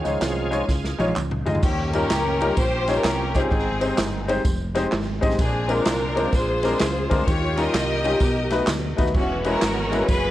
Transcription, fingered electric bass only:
0.05 0.19 C#2 medium
0.21 0.62 C2 medium
0.69 0.95 C#2 medium
0.99 1.13 A#1 medium
1.17 1.42 C#2 medium
1.47 1.61 D2 medium
1.63 2.03 D#2 medium
2.10 2.50 C#2 medium
2.57 2.97 A#1 medium
3.04 3.44 C2 loud
3.51 3.91 G#1 loud
3.98 4.38 G1 medium
4.45 4.85 F1 loud
4.93 5.18 G#1 loud
5.23 5.37 A1 medium
5.39 5.79 A#1 loud
5.86 6.26 C2 medium
6.33 6.73 A#1 medium
6.81 7.07 C#2 loud
7.11 7.25 D2 medium
7.27 7.67 D#2 loud
7.74 8.14 C2 medium
8.20 8.61 B1 loud
8.67 8.93 D2 medium
8.99 9.13 D#2 medium
9.14 9.55 E1 loud
9.62 10.02 G#1 medium
10.08 10.31 F#1 medium

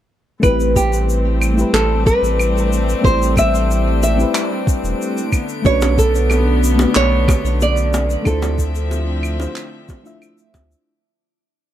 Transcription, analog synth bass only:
0.43 1.64 A1 medium
1.73 2.13 A1 medium
2.22 2.95 A1 medium
3.04 4.25 A1 loud
4.84 4.94 E1 medium
5.65 6.86 B1 loud
6.96 7.35 B1 medium
7.44 8.17 B1 medium
8.26 9.47 D2 loud
10.54 10.75 D2 medium

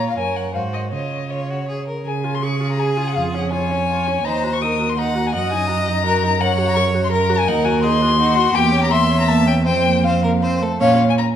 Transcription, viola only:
0.00 0.16 C#5 medium
0.17 0.54 C#5 soft
0.55 0.91 C5 medium
0.92 1.85 C#5 soft
2.06 2.26 G#4 soft
2.24 2.44 F4 soft
2.42 2.62 G#4 medium
2.61 2.79 F4 soft
2.79 2.99 G#4 medium
2.97 3.15 F4 soft
3.16 3.36 F4 medium
3.35 3.54 C#4 medium
3.52 3.73 F4 medium
3.71 3.89 C#4 medium
3.89 4.09 F4 medium
4.08 4.25 C#4 medium
4.25 4.46 D#4 medium
4.44 4.64 F#4 medium
4.62 4.81 D#4 medium
4.79 4.97 F#4 medium
4.98 5.16 D#4 medium
5.15 5.32 F#4 medium
5.33 5.53 F#4 medium
5.52 5.70 D#4 medium
5.69 5.89 F#4 medium
5.88 6.06 D#4 medium
6.06 6.25 F#4 medium
6.23 6.40 D#4 medium
6.41 6.60 A#4 medium
6.58 6.78 F#4 medium
6.77 6.96 A#4 medium
6.95 7.11 F#4 medium
7.12 7.31 A#4 medium
7.29 7.47 F#4 medium
7.48 7.67 D#4 medium
7.65 7.86 F#4 medium
7.84 8.04 D#4 medium
8.02 8.19 F#4 medium
8.19 8.38 D#4 medium
8.37 8.54 F#4 medium
8.54 8.74 A#3 medium
8.72 8.92 C#4 medium
8.91 9.11 A#3 medium
9.09 9.27 C#4 medium
9.28 9.49 A#3 medium
9.47 9.65 C#4 medium
9.66 9.88 C4 medium
9.87 10.06 A#3 medium
10.05 10.25 C4 medium
10.24 10.42 A#3 medium
10.43 10.63 C4 medium
10.61 10.80 A3 medium
10.80 10.98 C#4 medium

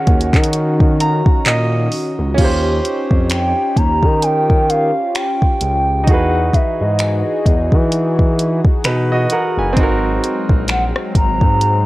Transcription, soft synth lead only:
0.00 1.46 F#5 loud
3.31 3.78 G5 loud
3.77 4.24 A#5 loud
4.23 4.71 G5 loud
4.69 5.17 F5 loud
5.15 6.09 G5 loud
6.08 6.55 F#5 loud
6.54 6.82 E5 medium
6.80 8.19 D#5 medium
10.70 10.84 F#5 medium
11.16 11.86 A#5 loud

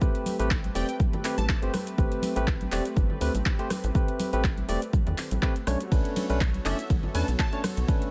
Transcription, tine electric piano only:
0.01 0.36 A3 medium
0.01 0.36 C4 medium
0.01 0.36 G4 medium
0.01 0.37 B4 medium
0.39 0.48 A3 medium
0.39 0.48 C4 medium
0.39 0.49 G4 medium
0.39 0.49 B4 medium
0.75 0.86 A3 medium
0.75 0.86 C4 medium
0.75 0.86 G4 medium
0.75 0.86 D5 loud
1.24 1.35 A3 medium
1.24 1.35 C4 medium
1.24 1.35 G4 medium
1.24 1.36 B4 medium
1.62 1.71 A3 medium
1.62 1.71 C4 medium
1.62 1.72 G4 medium
1.62 1.72 C5 medium
1.98 2.33 A3 medium
1.98 2.33 C4 medium
1.98 2.33 G4 medium
1.98 2.33 B4 medium
2.36 2.45 A3 medium
2.36 2.45 C4 medium
2.36 2.45 G4 medium
2.36 2.45 B4 medium
2.72 2.83 A3 medium
2.72 2.83 C4 medium
2.72 2.83 G4 medium
2.72 2.83 D5 loud
3.21 3.32 A3 medium
3.21 3.32 C4 medium
3.21 3.32 G4 medium
3.21 3.32 B4 medium
3.59 3.68 A3 medium
3.59 3.68 C4 medium
3.59 3.68 G4 medium
3.59 3.68 C5 medium
3.95 4.30 A3 medium
3.95 4.30 C4 medium
3.95 4.30 G4 medium
3.95 4.30 B4 medium
4.33 4.42 A3 medium
4.33 4.42 C4 medium
4.33 4.42 G4 medium
4.33 4.42 B4 medium
4.68 4.79 A3 medium
4.68 4.79 C4 medium
4.68 4.80 G4 medium
4.68 4.80 D5 loud
5.42 5.53 A3 medium
5.42 5.53 C4 medium
5.42 5.53 G4 medium
5.42 5.54 B4 loud
5.67 5.78 A3 medium
5.67 5.78 C#4 medium
5.67 5.78 D4 medium
5.67 5.78 C#5 medium
5.91 6.26 A3 medium
5.91 6.26 C#4 medium
5.91 6.27 D4 medium
5.91 6.27 B4 medium
6.29 6.38 A3 medium
6.29 6.39 C#4 medium
6.29 6.39 D4 medium
6.29 6.39 B4 medium
6.65 6.76 A3 medium
6.65 6.76 C#4 medium
6.65 6.76 D4 medium
6.65 6.76 D5 loud
7.14 7.25 A3 medium
7.14 7.25 C#4 medium
7.14 7.25 D4 medium
7.14 7.26 B4 medium
7.52 7.61 A3 medium
7.52 7.62 C#4 medium
7.52 7.62 D4 medium
7.52 7.62 C#5 loud
7.88 8.11 A3 medium
7.88 8.11 C#4 medium
7.88 8.11 D4 medium
7.88 8.11 B4 medium

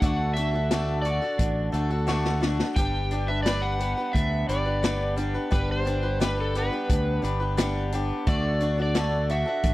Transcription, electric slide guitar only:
0.00 0.30 F#5 medium
0.34 1.02 E5 medium
1.02 1.68 D5 medium
2.76 3.29 G5 loud
3.28 3.43 E5 medium
3.43 3.62 D5 medium
3.62 4.15 F#5 loud
4.13 4.49 E5 medium
4.49 5.13 D5 medium
5.54 5.70 B4 medium
5.72 6.21 C5 loud
6.22 6.37 B4 medium
6.41 6.56 A4 medium
6.58 7.21 B4 medium
8.28 8.80 D5 medium
8.82 9.33 D5 medium
9.31 9.74 E5 loud

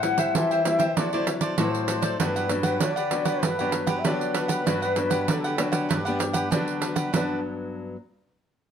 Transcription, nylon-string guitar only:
0.00 0.32 A2 medium
0.00 0.60 G3 medium
0.00 0.61 C4 medium
0.04 0.61 E4 medium
0.35 0.94 E3 medium
0.65 0.85 G3 medium
0.65 0.85 C4 medium
0.65 0.86 E4 medium
0.97 1.56 D3 medium
0.97 1.07 F#3 medium
0.97 1.08 C4 medium
0.97 1.08 E4 medium
1.13 1.54 F#3 medium
1.13 1.54 C4 medium
1.13 1.54 E4 medium
1.58 2.17 A2 medium
1.58 2.15 F#3 medium
1.58 2.15 C4 medium
1.58 2.16 E4 medium
2.20 2.79 G2 medium
2.20 2.46 F#3 medium
2.20 2.46 B3 medium
2.20 2.46 D4 medium
2.50 2.90 F#3 medium
2.50 2.90 B3 medium
2.50 2.90 D4 medium
2.81 3.40 D3 medium
3.11 3.41 F#3 medium
3.11 3.41 B3 medium
3.11 3.41 D4 medium
3.43 4.02 G2 medium
3.60 4.01 F#3 medium
3.60 4.01 B3 medium
3.60 4.01 D4 medium
4.05 4.64 D3 medium
4.05 4.62 F#3 medium
4.05 4.62 B3 medium
4.05 4.62 D4 medium
4.66 5.25 G2 medium
4.66 4.85 F#3 medium
4.66 4.85 B3 medium
4.66 4.85 D4 medium
4.97 5.54 F#3 medium
4.97 5.54 B3 medium
4.97 5.55 D4 medium
5.28 5.87 D3 medium
5.58 6.00 F#3 medium
5.58 6.00 B3 medium
5.58 6.01 D4 medium
5.90 6.49 G2 medium
6.08 6.48 B3 medium
6.08 6.48 D4 medium
6.52 7.11 D3 medium
6.52 7.09 F#3 medium
6.52 7.09 B3 medium
6.52 7.09 D4 medium
7.13 7.96 G2 medium
7.13 7.96 F#3 medium
7.13 7.96 B3 medium
7.13 7.96 D4 medium

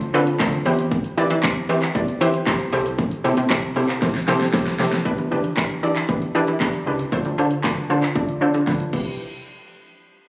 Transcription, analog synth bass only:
0.14 0.31 D3 loud
0.40 0.57 D2 loud
0.66 0.99 E2 loud
1.17 1.26 E3 loud
1.30 1.45 E3 loud
1.43 1.60 E2 loud
1.69 1.86 E3 loud
1.95 2.12 E2 loud
2.21 2.38 E3 loud
2.47 2.64 E2 loud
2.73 3.06 C2 loud
3.25 3.33 C3 loud
3.37 3.46 C3 medium
3.50 3.67 C2 loud
3.76 3.93 C3 medium
4.02 4.19 C2 loud
4.28 4.45 C3 loud
4.54 4.70 C2 loud
4.79 4.96 C3 loud
5.05 5.14 E2 loud
5.18 5.33 E2 medium
5.31 5.48 E3 medium
5.57 5.74 E2 loud
5.83 6.00 E3 loud
6.09 6.26 E2 loud
6.35 6.43 E3 loud
6.48 6.56 E3 loud
6.60 6.77 E2 loud
6.86 7.03 C#2 medium
7.12 7.21 D2 loud
7.25 7.34 D2 loud
7.38 7.55 D3 loud
7.64 7.81 D2 loud
7.90 8.07 D3 loud
8.16 8.32 D2 loud
8.42 8.50 D3 loud
8.54 8.63 D3 loud
8.67 8.84 D2 medium
8.93 9.17 C2 loud

